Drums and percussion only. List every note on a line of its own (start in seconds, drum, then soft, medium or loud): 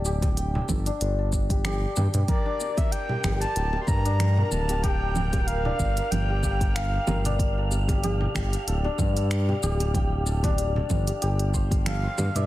0.05 high bongo soft
0.05 shaker medium
0.22 kick loud
0.22 closed hi-hat soft
0.22 high bongo medium
0.22 high conga medium
0.22 shaker soft
0.37 closed hi-hat medium
0.37 shaker soft
0.55 low conga loud
0.69 kick medium
0.69 high conga medium
0.69 low conga medium
0.69 shaker medium
0.86 closed hi-hat soft
0.86 shaker soft
1.01 closed hi-hat medium
1.01 shaker soft
1.33 kick medium
1.33 shaker medium
1.50 kick loud
1.50 closed hi-hat soft
1.50 shaker soft
1.65 finger snap medium
1.65 closed hi-hat soft
1.65 low conga medium
1.65 shaker soft
1.96 high bongo medium
1.96 high conga medium
1.96 shaker medium
2.14 closed hi-hat soft
2.14 low conga medium
2.14 shaker soft
2.28 kick loud
2.28 closed hi-hat soft
2.28 low conga medium
2.28 shaker soft
2.60 high bongo soft
2.60 shaker medium
2.77 kick loud
2.77 closed hi-hat soft
2.77 high bongo medium
2.77 high conga medium
2.77 shaker soft
2.92 closed hi-hat medium
2.92 shaker soft
3.09 low conga loud
3.24 finger snap medium
3.24 kick medium
3.24 high conga medium
3.24 low conga medium
3.24 shaker medium
3.42 closed hi-hat soft
3.42 shaker soft
3.56 closed hi-hat soft
3.56 shaker soft
3.73 high bongo medium
3.87 kick loud
3.87 high conga medium
3.87 shaker medium
4.05 closed hi-hat soft
4.05 shaker soft
4.20 finger snap medium
4.20 closed hi-hat medium
4.20 low conga medium
4.20 shaker soft
4.37 high bongo soft
4.37 low conga medium
4.51 high conga medium
4.51 shaker medium
4.69 closed hi-hat soft
4.69 high bongo medium
4.69 shaker soft
4.84 kick loud
4.84 closed hi-hat medium
4.84 shaker soft
5.16 high bongo soft
5.16 low conga medium
5.16 shaker medium
5.33 kick loud
5.33 closed hi-hat soft
5.33 high bongo medium
5.33 high conga medium
5.33 shaker soft
5.48 closed hi-hat medium
5.48 shaker soft
5.65 low conga medium
5.79 kick medium
5.79 high conga medium
5.79 shaker medium
5.97 closed hi-hat soft
5.97 shaker soft
6.12 closed hi-hat medium
6.12 low conga medium
6.12 shaker soft
6.44 kick medium
6.44 shaker medium
6.61 kick loud
6.61 closed hi-hat soft
6.61 shaker soft
6.76 finger snap medium
6.76 closed hi-hat medium
6.76 shaker soft
7.07 high bongo medium
7.07 high conga medium
7.07 low conga medium
7.07 shaker medium
7.25 closed hi-hat soft
7.25 low conga medium
7.25 shaker soft
7.39 kick loud
7.39 closed hi-hat medium
7.39 shaker soft
7.71 high bongo soft
7.71 shaker medium
7.88 kick loud
7.88 closed hi-hat soft
7.88 high bongo medium
7.88 high conga medium
7.88 shaker soft
8.04 closed hi-hat medium
8.04 low conga medium
8.04 shaker soft
8.21 low conga medium
8.35 finger snap medium
8.35 kick medium
8.35 high conga medium
8.35 shaker medium
8.53 closed hi-hat soft
8.53 shaker soft
8.68 closed hi-hat medium
8.68 shaker soft
8.84 high bongo soft
8.98 kick loud
8.98 high conga medium
8.98 low conga medium
8.98 shaker medium
9.17 closed hi-hat soft
9.17 shaker soft
9.31 finger snap medium
9.31 closed hi-hat medium
9.31 shaker soft
9.49 high bongo soft
9.49 low conga medium
9.63 high conga medium
9.63 shaker medium
9.80 closed hi-hat soft
9.80 high bongo medium
9.80 shaker soft
9.95 kick loud
9.95 closed hi-hat medium
9.95 low conga medium
9.95 shaker soft
10.26 high bongo soft
10.26 shaker medium
10.44 kick loud
10.44 closed hi-hat soft
10.44 high bongo medium
10.44 high conga medium
10.44 shaker soft
10.58 closed hi-hat medium
10.58 shaker soft
10.76 low conga medium
10.90 kick medium
10.90 high conga medium
10.90 low conga medium
10.90 shaker medium
11.07 closed hi-hat soft
11.07 shaker soft
11.22 closed hi-hat medium
11.22 shaker soft
11.39 closed hi-hat soft
11.54 kick medium
11.54 shaker medium
11.71 kick loud
11.71 closed hi-hat soft
11.71 shaker soft
11.86 finger snap medium
11.86 closed hi-hat medium
11.86 low conga medium
11.86 shaker soft
12.18 high bongo medium
12.18 high conga medium
12.18 shaker medium
12.35 closed hi-hat soft
12.35 low conga medium
12.35 shaker soft